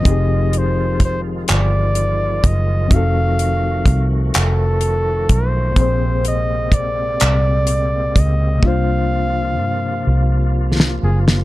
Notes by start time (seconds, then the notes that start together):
Already playing: F3 F4 D#5
0.01 D#3 F3 G#3 C4
0.05 F1 D#4 G4, kick, closed hi-hat
0.10 G#4
0.53 closed hi-hat
0.58 C5
1.00 kick, closed hi-hat
1.05 C5
1.48 G1 D5, clap, closed hi-hat
1.95 closed hi-hat
2.44 F#1 D#5, kick, closed hi-hat
2.86 F3 A3 C4 F#4
2.91 F1 D#4 F#4 F5, kick, closed hi-hat
2.96 A4
3.39 closed hi-hat
3.86 C2, kick, closed hi-hat
4.34 F1 A4, clap, closed hi-hat
4.81 closed hi-hat
5.29 B1 C5, kick, closed hi-hat
5.71 A#2 A#3
5.76 A#1 C3 G#3 A#3 C4 G#4, kick, closed hi-hat
5.81 C5
6.25 D#5, closed hi-hat
6.72 D5, kick, closed hi-hat
7.20 C2, clap, closed hi-hat
7.67 closed hi-hat
8.16 C#2, kick, closed hi-hat
8.20 D#5
8.58 C3 A#3
8.63 C2 F3 D4 F4, kick
8.67 C5 F5
9.60 G2
10.07 C2
10.80 snare
11.03 F#1 G#4
11.28 snare